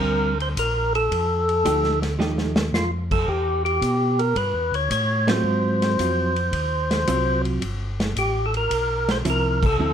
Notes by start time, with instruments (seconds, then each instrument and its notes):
Already playing: hollow-body jazz guitar G3 C4 D4, tonewheel organ A#4
0.02 tonewheel organ D2
0.40 tonewheel organ C5, ride
0.57 tonewheel organ A#1 A#4, kick, hi-hat pedal, ride
0.95 tonewheel organ A4, ride
1.11 tonewheel organ F2, kick, ride
1.49 ride
1.65 tonewheel organ D2, hollow-body jazz guitar F3 A3 D#4 G4, kick, hi-hat pedal, ride
1.84 snare
2.02 snare, ride
2.19 tonewheel organ D#2, hollow-body jazz guitar F3 A3 D#4 G4, snare
2.38 snare
2.56 snare
2.73 tonewheel organ F2 F4, snare, hi-hat pedal
3.11 tonewheel organ A4, kick, crash
3.28 tonewheel organ E2 G4, kick
3.65 tonewheel organ G4, ride
3.81 tonewheel organ B2, kick, hi-hat pedal, ride
4.19 tonewheel organ A#4, ride
4.36 tonewheel organ G2 B4, kick, ride
4.53 tonewheel organ E2
4.71 tonewheel organ D2 C#5, ride
4.90 tonewheel organ A2 C#5, kick, hi-hat pedal, ride
5.27 hollow-body jazz guitar F#3 C4 F4, tonewheel organ C5, snare, ride
5.44 tonewheel organ G#2
5.82 snare, ride
5.99 tonewheel organ F2, hollow-body jazz guitar F#3 C4 F4, kick, hi-hat pedal, ride
6.36 ride
6.52 tonewheel organ D#2, kick, ride
6.91 snare, ride
7.07 tonewheel organ C2, hollow-body jazz guitar F#3 C4 F4, kick, hi-hat pedal, ride
7.45 ride
7.61 tonewheel organ G1, kick, ride
8.00 snare, ride
8.16 tonewheel organ A1 G4, kick, hi-hat pedal, ride
8.46 tonewheel organ A4
8.54 tonewheel organ A#4, ride
8.70 tonewheel organ B1, kick, ride
9.09 tonewheel organ C5, snare, ride
9.25 tonewheel organ C2, hollow-body jazz guitar F3 C4 E4, kick, hi-hat pedal, ride
9.30 tonewheel organ A#4
9.63 tonewheel organ A4, kick, crash
9.78 tonewheel organ D2, hollow-body jazz guitar F3 C4 E4